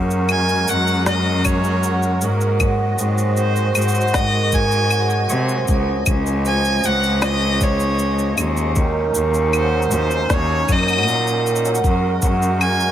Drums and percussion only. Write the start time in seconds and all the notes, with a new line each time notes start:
0.10 cabasa
0.29 cabasa, claves
0.49 cabasa
0.68 cabasa
0.87 cabasa
1.06 snare, cabasa
1.45 kick, cabasa, claves
1.64 cabasa
1.83 cabasa
2.03 cabasa
2.21 cabasa
2.41 cabasa
2.60 kick, cabasa, claves
2.99 cabasa
3.18 cabasa
3.37 cabasa
3.56 cabasa
3.75 cabasa, claves
3.81 cabasa
3.88 cabasa
3.94 cabasa
4.01 cabasa
4.08 cabasa
4.14 kick, snare, cabasa
4.52 kick, cabasa
4.71 cabasa
4.91 cabasa, claves
5.10 cabasa
5.29 cabasa
5.49 cabasa
5.68 kick, cabasa
6.06 kick, cabasa, claves
6.26 cabasa
6.45 cabasa
6.65 cabasa
6.84 cabasa
7.03 cabasa
7.22 snare, cabasa, claves
7.61 kick, cabasa
7.80 cabasa
7.99 cabasa
8.19 cabasa
8.38 cabasa, claves
8.57 cabasa
8.76 kick, cabasa
9.15 cabasa
9.34 cabasa
9.53 cabasa, claves
9.82 cabasa
9.91 cabasa
10.11 cabasa
10.30 kick, snare, cabasa
10.69 kick, cabasa, claves
10.73 claves
10.78 claves
10.83 claves
10.88 cabasa, claves
10.93 claves
10.98 claves
11.03 claves
11.08 cabasa
11.27 cabasa
11.46 cabasa
11.56 cabasa
11.65 cabasa
11.75 cabasa
11.84 kick, cabasa
12.22 kick, cabasa
12.42 cabasa
12.61 cabasa, claves
12.80 cabasa